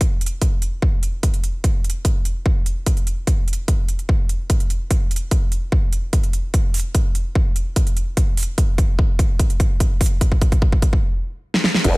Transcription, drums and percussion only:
0.01 kick medium
0.01 closed hi-hat medium
0.21 closed hi-hat soft
0.26 closed hi-hat medium
0.42 kick medium
0.42 closed hi-hat medium
0.62 closed hi-hat medium
0.82 kick loud
1.03 closed hi-hat medium
1.23 kick medium
1.23 closed hi-hat medium
1.34 closed hi-hat soft
1.44 closed hi-hat medium
1.64 kick loud
1.64 closed hi-hat medium
1.84 closed hi-hat soft
1.90 closed hi-hat medium
2.05 kick medium
2.05 closed hi-hat medium
2.25 closed hi-hat medium
2.46 kick loud
2.66 closed hi-hat medium
2.86 kick medium
2.86 closed hi-hat medium
2.97 closed hi-hat soft
3.07 closed hi-hat soft
3.27 kick loud
3.27 closed hi-hat medium
3.48 closed hi-hat soft
3.53 closed hi-hat medium
3.68 kick medium
3.68 closed hi-hat medium
3.89 closed hi-hat soft
3.99 closed hi-hat soft
4.09 kick loud
4.29 closed hi-hat medium
4.50 kick loud
4.50 closed hi-hat medium
4.60 closed hi-hat soft
4.70 closed hi-hat soft
4.91 kick loud
4.91 closed hi-hat medium
5.11 closed hi-hat soft
5.16 closed hi-hat medium
5.31 kick loud
5.31 closed hi-hat medium
5.52 closed hi-hat soft
5.72 kick loud
5.93 closed hi-hat medium
6.13 kick loud
6.13 closed hi-hat medium
6.23 closed hi-hat soft
6.33 closed hi-hat medium
6.54 kick loud
6.54 closed hi-hat medium
6.74 open hi-hat medium
6.79 closed hi-hat medium
6.95 kick loud
6.95 closed hi-hat medium
7.15 closed hi-hat medium
7.35 kick loud
7.56 closed hi-hat medium
7.76 kick loud
7.76 closed hi-hat medium
7.87 closed hi-hat soft
7.97 closed hi-hat soft
8.17 kick loud
8.17 closed hi-hat medium
8.37 open hi-hat loud
8.43 closed hi-hat medium
8.58 kick loud
8.58 closed hi-hat medium
8.78 kick loud
8.78 closed hi-hat medium
8.99 kick loud
9.19 kick loud
9.19 closed hi-hat medium
9.39 kick loud
9.39 closed hi-hat medium
9.50 closed hi-hat soft
9.60 kick loud
9.60 closed hi-hat medium
9.80 kick loud
9.80 closed hi-hat medium
10.01 kick loud
10.01 open hi-hat loud
10.06 closed hi-hat medium
10.21 kick loud
10.21 closed hi-hat medium
10.32 kick medium
10.42 kick loud
10.42 closed hi-hat medium
10.52 kick medium
10.52 closed hi-hat soft
10.62 kick loud
10.72 kick medium
10.82 kick loud
10.82 closed hi-hat medium
10.93 kick medium
11.54 snare medium
11.64 snare medium
11.75 snare medium
11.84 kick loud
11.84 closed hi-hat medium
11.84 crash loud

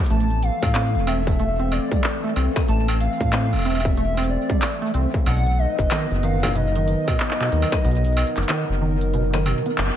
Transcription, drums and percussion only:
0.04 closed hi-hat soft
0.06 closed hi-hat medium
0.10 shaker medium
0.20 closed hi-hat medium
0.30 closed hi-hat soft
0.43 closed hi-hat medium
0.63 kick loud
0.63 closed hi-hat medium
0.63 struck metal medium
0.63 shaker medium
0.75 clap loud
0.75 closed hi-hat medium
0.75 struck metal medium
0.95 closed hi-hat soft
1.07 closed hi-hat medium
1.07 struck metal medium
1.27 kick loud
1.27 closed hi-hat medium
1.39 closed hi-hat medium
1.59 closed hi-hat soft
1.72 closed hi-hat medium
1.72 struck metal medium
1.92 kick loud
1.92 closed hi-hat medium
2.04 clap loud
2.04 closed hi-hat soft
2.24 closed hi-hat soft
2.36 closed hi-hat medium
2.36 struck metal soft
2.56 kick loud
2.56 closed hi-hat soft
2.56 struck metal medium
2.68 closed hi-hat medium
2.68 shaker medium
2.88 closed hi-hat soft
2.88 struck metal medium
3.01 closed hi-hat medium
3.21 kick loud
3.21 shaker medium
3.33 clap loud
3.33 closed hi-hat soft
3.33 struck metal medium
3.53 closed hi-hat soft
3.53 struck metal soft
3.56 struck metal soft
3.59 struck metal soft
3.62 closed hi-hat medium
3.62 struck metal soft
3.65 struck metal soft
3.70 struck metal soft
3.75 struck metal soft
3.80 struck metal soft
3.85 kick loud
3.85 closed hi-hat soft
3.97 closed hi-hat medium
4.17 closed hi-hat soft
4.17 struck metal medium
4.23 closed hi-hat medium
4.50 kick loud
4.50 closed hi-hat soft
4.62 clap loud
4.62 closed hi-hat medium
4.62 struck metal medium
4.82 closed hi-hat soft
4.94 closed hi-hat medium
5.14 kick loud
5.14 closed hi-hat medium
5.26 closed hi-hat medium
5.26 struck metal medium
5.36 shaker medium
5.46 closed hi-hat soft
5.79 kick loud
5.79 closed hi-hat medium
5.79 shaker medium
5.91 clap loud
5.91 closed hi-hat medium
5.91 struck metal loud
5.91 struck metal medium
6.11 closed hi-hat soft
6.23 closed hi-hat medium
6.43 kick loud
6.43 closed hi-hat medium
6.43 struck metal medium
6.45 kick medium
6.47 kick medium
6.48 kick medium
6.50 kick soft
6.52 kick soft
6.54 kick soft
6.54 closed hi-hat medium
6.75 closed hi-hat soft
6.88 closed hi-hat medium
7.08 kick loud
7.08 struck metal medium
7.20 clap loud
7.20 closed hi-hat medium
7.31 clap medium
7.40 clap medium
7.40 closed hi-hat soft
7.52 closed hi-hat medium
7.62 struck metal medium
7.72 kick loud
7.72 closed hi-hat soft
7.72 struck metal medium
7.85 closed hi-hat medium
7.91 closed hi-hat soft
7.95 closed hi-hat soft
8.05 closed hi-hat soft
8.05 shaker medium
8.13 closed hi-hat soft
8.17 closed hi-hat soft
8.17 struck metal medium
8.27 closed hi-hat medium
8.37 clap medium
8.37 closed hi-hat medium
8.37 shaker medium
8.43 closed hi-hat medium
8.49 clap loud
8.49 closed hi-hat medium
8.49 struck metal loud
8.59 closed hi-hat soft
9.01 closed hi-hat medium
9.14 closed hi-hat medium
9.34 closed hi-hat soft
9.34 struck metal medium
9.46 struck metal medium
9.66 closed hi-hat medium
9.78 clap loud
9.78 closed hi-hat medium

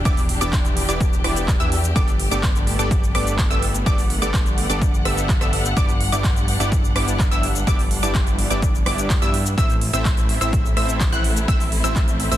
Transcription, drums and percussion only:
0.05 kick loud
0.05 closed hi-hat medium
0.05 shaker medium
0.17 open hi-hat medium
0.17 shaker soft
0.29 open hi-hat loud
0.41 closed hi-hat medium
0.41 shaker medium
0.53 kick loud
0.53 clap loud
0.53 closed hi-hat medium
0.53 shaker medium
0.65 closed hi-hat soft
0.65 shaker soft
0.77 open hi-hat loud
0.89 closed hi-hat medium
0.89 shaker medium
1.01 kick loud
1.01 closed hi-hat medium
1.01 shaker medium
1.13 shaker soft
1.24 cross-stick medium
1.24 open hi-hat loud
1.36 closed hi-hat medium
1.36 shaker medium
1.48 kick loud
1.48 clap loud
1.48 closed hi-hat medium
1.48 shaker medium
1.60 closed hi-hat soft
1.60 shaker soft
1.72 open hi-hat loud
1.84 closed hi-hat medium
1.84 shaker medium
1.96 kick loud
1.96 closed hi-hat medium
1.96 shaker medium
2.08 closed hi-hat soft
2.08 shaker soft
2.20 open hi-hat loud
2.31 closed hi-hat medium
2.31 shaker medium
2.43 kick loud
2.43 clap loud
2.43 closed hi-hat medium
2.43 shaker medium
2.55 closed hi-hat soft
2.55 shaker soft
2.67 open hi-hat loud
2.79 closed hi-hat medium
2.79 shaker medium
2.91 kick loud
2.91 closed hi-hat medium
2.91 shaker medium
3.04 shaker soft
3.15 cross-stick medium
3.15 open hi-hat loud
3.27 closed hi-hat medium
3.27 shaker medium
3.39 kick loud
3.39 clap loud
3.39 closed hi-hat medium
3.39 shaker medium
3.51 closed hi-hat soft
3.51 shaker soft
3.62 open hi-hat loud
3.74 closed hi-hat medium
3.74 shaker medium
3.86 kick loud
3.86 closed hi-hat medium
3.86 shaker medium
3.98 open hi-hat medium
3.98 shaker soft
4.10 open hi-hat loud
4.22 closed hi-hat medium
4.22 shaker medium
4.34 kick loud
4.34 clap loud
4.34 closed hi-hat medium
4.34 shaker medium
4.46 closed hi-hat soft
4.46 shaker soft
4.58 open hi-hat loud
4.70 closed hi-hat medium
4.70 shaker medium
4.82 kick loud
4.82 closed hi-hat medium
4.82 shaker medium
4.94 shaker soft
5.05 cross-stick medium
5.05 open hi-hat loud
5.17 closed hi-hat medium
5.17 shaker medium
5.29 kick loud
5.29 clap loud
5.29 closed hi-hat medium
5.29 shaker medium
5.41 cross-stick medium
5.41 closed hi-hat soft
5.41 shaker soft
5.53 open hi-hat loud
5.65 closed hi-hat medium
5.65 shaker medium
5.77 kick loud
5.77 closed hi-hat medium
5.77 shaker medium
5.89 closed hi-hat soft
5.89 shaker soft
6.01 open hi-hat loud
6.12 closed hi-hat medium
6.12 shaker medium
6.24 kick loud
6.24 clap loud
6.24 closed hi-hat medium
6.24 shaker medium
6.36 closed hi-hat soft
6.36 shaker soft
6.48 open hi-hat loud
6.60 closed hi-hat medium
6.60 shaker medium
6.72 kick loud
6.72 closed hi-hat medium
6.72 shaker medium
6.85 shaker soft
6.96 cross-stick medium
6.96 open hi-hat loud
7.08 closed hi-hat soft
7.08 shaker medium
7.19 kick loud
7.19 clap loud
7.19 closed hi-hat medium
7.19 shaker medium
7.32 closed hi-hat soft
7.32 shaker soft
7.43 open hi-hat loud
7.55 closed hi-hat medium
7.55 shaker medium
7.67 kick loud
7.67 closed hi-hat medium
7.67 shaker medium
7.79 open hi-hat medium
7.79 shaker soft
7.91 open hi-hat loud
8.03 closed hi-hat medium
8.03 shaker medium
8.15 kick loud
8.15 clap loud
8.15 closed hi-hat medium
8.15 shaker medium
8.27 closed hi-hat soft
8.27 shaker soft
8.39 open hi-hat loud
8.50 closed hi-hat medium
8.50 shaker medium
8.62 kick loud
8.62 closed hi-hat medium
8.62 shaker medium
8.75 shaker soft
8.86 cross-stick medium
8.86 open hi-hat loud
8.98 closed hi-hat medium
8.98 shaker medium
9.10 kick loud
9.10 clap loud
9.10 closed hi-hat medium
9.10 shaker medium
9.22 closed hi-hat soft
9.22 shaker soft
9.34 open hi-hat loud
9.46 closed hi-hat medium
9.46 shaker medium
9.58 kick loud
9.58 closed hi-hat medium
9.58 shaker medium
9.70 closed hi-hat soft
9.70 shaker soft
9.81 open hi-hat loud
9.93 closed hi-hat medium
9.93 shaker medium
10.05 kick loud
10.05 clap loud
10.05 closed hi-hat medium
10.05 shaker medium
10.17 closed hi-hat soft
10.17 shaker soft
10.29 open hi-hat loud
10.41 closed hi-hat medium
10.41 shaker medium
10.53 kick loud
10.53 closed hi-hat medium
10.53 shaker medium
10.66 shaker soft
10.77 cross-stick medium
10.77 open hi-hat loud
10.89 closed hi-hat medium
10.89 shaker medium
11.00 kick loud
11.00 clap loud
11.00 closed hi-hat medium
11.00 shaker medium
11.12 closed hi-hat soft
11.12 shaker soft
11.24 open hi-hat loud
11.36 closed hi-hat medium
11.36 shaker medium
11.48 kick loud
11.48 closed hi-hat medium
11.48 shaker medium
11.60 open hi-hat medium
11.60 shaker soft
11.72 open hi-hat loud
11.84 closed hi-hat medium
11.84 shaker medium
11.96 kick loud
11.96 clap loud
11.96 closed hi-hat medium
11.96 shaker medium
12.08 closed hi-hat soft
12.08 shaker soft
12.20 open hi-hat loud
12.32 closed hi-hat medium
12.32 shaker medium

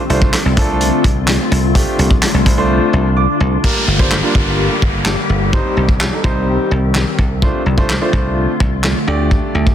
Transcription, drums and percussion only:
0.10 closed hi-hat medium
0.22 kick medium
0.33 snare medium
0.33 clap loud
0.33 closed hi-hat loud
0.57 kick loud
0.57 closed hi-hat medium
0.81 closed hi-hat medium
1.04 kick loud
1.04 closed hi-hat medium
1.28 snare loud
1.28 clap loud
1.28 closed hi-hat loud
1.52 closed hi-hat medium
1.75 kick loud
1.75 closed hi-hat loud
1.99 closed hi-hat medium
2.11 kick medium
2.22 snare medium
2.22 clap loud
2.22 closed hi-hat loud
2.46 kick loud
2.46 closed hi-hat medium
3.64 kick medium
3.64 crash medium
3.99 kick medium
4.12 snare medium
4.12 clap loud
4.35 kick medium
4.82 kick medium
5.06 snare medium
5.06 clap loud
5.53 kick loud
5.89 kick medium
6.01 snare medium
6.01 clap loud
6.24 kick medium
6.95 snare medium
6.95 clap loud
7.19 kick medium
7.42 kick loud
7.78 kick medium
7.90 snare medium
7.90 clap loud
8.13 kick medium
8.60 kick medium
8.84 snare loud
8.84 clap loud
9.31 kick loud
9.67 kick medium

